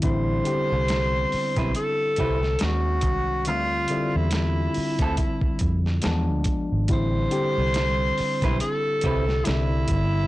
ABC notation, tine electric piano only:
X:1
M:4/4
L:1/8
Q:"Swing 16ths" 1/4=70
K:Am
V:1 name="Tine electric piano"
[D,G,CE] [D,G,B,CG]3 z2 [^D,^G,^C^F]2 | [D,G,CF] [D,G,CE]3 z2 [F,^G,B,D]2 | [D,G,CE] [D,G,CG]3 z2 [D,G,C^DE]2 |]